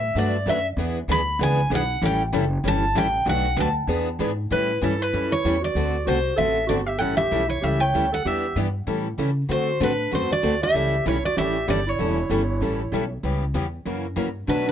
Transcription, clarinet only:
4.52 E4
4.81 C#4
4.99 E4
5.30 E4
5.61 F#4
6.05 F#4
6.36 A4
6.67 F#4
6.86 G4
6.98 A4
7.17 G4
7.48 E4
7.61 G4
7.81 C#5
8.12 A4
8.25 G4
9.50 F#4
9.81 D4
10.13 F#4
10.31 F#4
10.62 G4
11.07 E4
11.26 F#4
11.37 G4
11.68 G4
11.87 E4
14.48 D4
14.67 D4

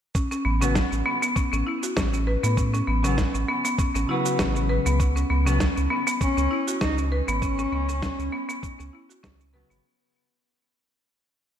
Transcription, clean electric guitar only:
0.61 C#3 F#3 B3
3.03 C#3 F#3 B3
4.07 C#3 F#3
4.11 B3
5.45 C#3 F#3 B3
9.53 C#3 F#3 B3

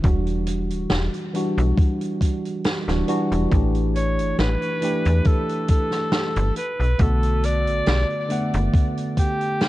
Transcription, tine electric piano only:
0.02 E3 G3 D4 F#4
1.33 E3 G3 D4 F#4
2.87 E3 G3 D4 F#4
3.08 E3 G3 D4 F#4
3.50 E3 A3 D4 G4
4.81 E3 A3 D4 G4
6.98 D3 A3 B3 F#4
8.29 D3 A3 B3 F#5

